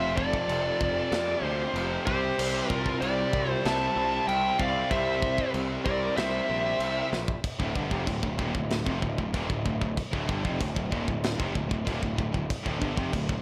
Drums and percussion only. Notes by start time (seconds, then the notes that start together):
0.18 kick
0.33 kick
0.49 china
0.81 kick
1.12 snare, china
1.76 china
2.07 kick
2.39 china, crash
2.70 kick
2.86 kick
3.02 china
3.33 kick
3.65 snare, china
4.29 china
4.59 kick
4.91 kick, china
5.22 kick
5.38 kick
5.54 china
5.86 kick
6.17 snare, china
6.80 china
7.13 snare
7.28 kick
7.44 kick, crash
7.60 kick
7.76 kick
7.91 kick
8.07 kick, crash
8.23 kick
8.39 kick
8.55 kick
8.70 snare, crash
8.86 kick
9.02 kick
9.18 kick
9.34 kick, crash
9.50 kick
9.66 kick
9.81 kick
9.97 kick, crash
10.13 kick
10.29 kick
10.45 kick
10.61 kick, crash
10.76 kick
10.92 kick
11.08 kick
11.24 snare, crash
11.40 kick
11.55 kick
11.71 kick
11.87 kick, crash
12.03 kick
12.18 kick
12.34 kick
12.50 kick, crash
12.66 kick
12.82 kick
12.97 kick
13.13 kick, crash
13.29 kick